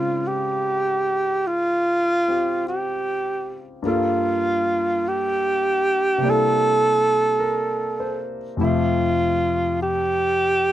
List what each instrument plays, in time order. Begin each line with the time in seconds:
Already playing: grand piano C#3 G#3 C4 D#4 F4, alto saxophone F4
0.27 alto saxophone G4
1.47 alto saxophone F4
2.28 grand piano C4 F4 G4
2.68 alto saxophone G4
3.82 grand piano G2 G3 A#3 F4
3.87 alto saxophone F4, grand piano A4
5.08 alto saxophone G4
6.18 grand piano C3 G3
6.23 grand piano A#3 D4
6.27 grand piano E4 A4, alto saxophone A4
7.40 grand piano A#4
8.00 grand piano C5
8.57 grand piano F2 C3 A3 G4, alto saxophone E4
8.61 alto saxophone F4, grand piano E5
9.82 alto saxophone G4